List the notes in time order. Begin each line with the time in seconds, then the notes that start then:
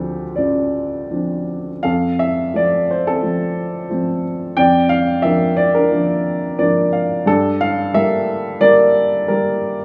Already playing: D2 F3 C4 D4 F4 G4 A4 C5
0.36 A1 F4 D5
1.10 F3 C4 D4
1.83 F2 A4 F5
2.19 E5
2.53 F3 A3 C4 D5
2.91 C5
3.07 C4 A4
3.22 F3 A3 C4
3.89 F3 A3 C4
4.57 F2 D5 G5
4.89 F5
5.22 F3 A#3 D4 E5
5.57 D5
5.75 D4 A#4
5.91 F3 A#3 D4
6.59 F3 A#3 D4 D5
6.93 F5
7.26 G2 D4 A4
7.61 F5
7.93 G3 A3 A#3 E5
8.61 G3 A#3 A#4 D5
9.28 G3 A#3 A#4